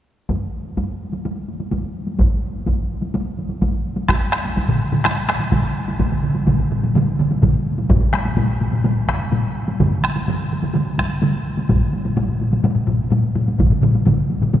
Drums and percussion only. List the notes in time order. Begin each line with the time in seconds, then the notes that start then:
0.29 taiko, taiko high
0.77 taiko, taiko high
1.13 taiko high
1.25 taiko high
1.49 taiko high
1.60 taiko high
1.71 taiko, taiko high
2.07 taiko high
2.19 taiko, taiko high
2.66 taiko, taiko high
3.02 taiko high
3.14 taiko high
3.38 taiko high
3.50 taiko high
3.61 taiko, taiko high
3.97 taiko high
4.08 taiko rim, taiko, taiko high
4.32 taiko rim
4.45 taiko high
4.57 taiko, taiko high
4.68 taiko low-mid, taiko mid
4.92 taiko low-mid, taiko mid, taiko high
5.04 taiko rim, taiko high
5.29 taiko rim, taiko high
5.40 taiko high
5.52 taiko, taiko low-mid, taiko mid, taiko high
5.88 taiko high
6.00 taiko, taiko low-mid, taiko mid, taiko high
6.11 taiko low-mid, taiko mid
6.24 taiko low-mid, taiko mid
6.35 taiko high
6.47 taiko, taiko low-mid, taiko mid, taiko high
6.59 taiko low-mid, taiko mid
6.71 taiko low-mid, taiko mid
6.83 taiko low-mid, taiko mid, taiko high
6.95 taiko low-mid, taiko mid, taiko high
7.19 taiko low-mid, taiko mid, taiko high
7.31 taiko high
7.42 taiko, taiko low-mid, taiko mid, taiko high
7.78 taiko high
7.90 taiko, taiko low-mid, taiko high
8.14 taiko rim, taiko high
8.25 taiko high
8.37 taiko low-mid, taiko high
8.61 taiko low-mid, taiko high
8.73 taiko low-mid, taiko high
8.84 taiko low-mid, taiko high
9.08 taiko rim, taiko, taiko high
9.32 taiko low-mid, taiko high
9.68 taiko high
9.80 taiko, taiko mid, taiko high
10.04 taiko rim, taiko high
10.16 taiko high
10.28 taiko mid, taiko high
10.52 taiko mid
10.63 taiko mid, taiko high
10.74 taiko mid, taiko high
10.98 taiko rim, taiko, taiko high
11.22 taiko mid, taiko high
11.57 taiko high
11.69 taiko, taiko low-mid, taiko high
11.93 taiko high
12.05 taiko low-mid, taiko high
12.16 taiko low-mid, taiko high
12.28 taiko low-mid
12.40 taiko low-mid, taiko high
12.52 taiko low-mid, taiko high
12.63 taiko low-mid, taiko high
12.75 taiko low-mid
12.87 taiko, taiko low-mid, taiko high
13.10 taiko low-mid, taiko high
13.35 taiko low-mid, taiko high
13.48 taiko high
13.59 taiko, taiko low-mid, taiko mid, taiko high
13.71 taiko low-mid, taiko mid
13.82 taiko low-mid, taiko mid, taiko high
13.95 taiko high
14.05 taiko, taiko low-mid, taiko mid, taiko high
14.30 taiko high
14.42 taiko low-mid, taiko mid, taiko high
14.53 taiko low-mid, taiko mid, taiko high